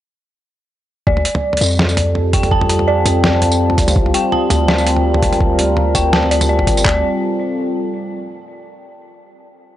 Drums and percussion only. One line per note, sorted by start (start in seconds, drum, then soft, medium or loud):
1.07 kick loud
1.17 mid tom medium
1.25 closed hi-hat medium
1.35 mid tom medium
1.53 mid tom medium
1.57 closed hi-hat medium
1.61 tambourine medium
1.64 tambourine soft
1.66 tambourine soft
1.68 tambourine soft
1.71 tambourine soft
1.73 tambourine soft
1.75 tambourine soft
1.77 snare loud
1.77 mid tom medium
1.77 tambourine soft
1.89 tambourine soft
1.97 closed hi-hat medium
1.97 mid tom medium
2.15 mid tom medium
2.33 kick loud
2.33 closed hi-hat medium
2.43 closed hi-hat soft
2.43 mid tom medium
2.51 kick loud
2.61 mid tom medium
2.69 closed hi-hat medium
2.79 mid tom medium
3.06 closed hi-hat medium
3.06 mid tom medium
3.06 tambourine medium
3.24 snare loud
3.24 mid tom medium
3.42 closed hi-hat medium
3.42 mid tom medium
3.52 tambourine medium
3.70 mid tom medium
3.78 kick loud
3.78 closed hi-hat medium
3.78 tambourine soft
3.88 closed hi-hat soft
3.88 mid tom medium
3.88 tambourine medium
3.96 kick loud
4.06 mid tom medium
4.14 closed hi-hat medium
4.32 mid tom medium
4.50 closed hi-hat medium
4.50 mid tom medium
4.50 tambourine medium
4.68 snare loud
4.68 mid tom medium
4.78 tambourine soft
4.87 closed hi-hat medium
4.96 mid tom medium
5.14 mid tom medium
5.22 kick loud
5.22 closed hi-hat medium
5.33 closed hi-hat soft
5.33 mid tom medium
5.41 kick loud
5.59 closed hi-hat medium
5.59 mid tom medium
5.77 mid tom medium
5.95 kick medium
5.95 closed hi-hat medium
5.95 mid tom medium
5.95 tambourine medium
6.13 snare loud
6.23 mid tom soft
6.31 closed hi-hat medium
6.41 mid tom medium
6.41 tambourine medium
6.59 kick medium
6.59 mid tom medium
6.67 kick loud
6.67 closed hi-hat medium
6.67 tambourine soft
6.77 closed hi-hat soft
6.77 tambourine medium
6.85 kick loud
6.85 clap medium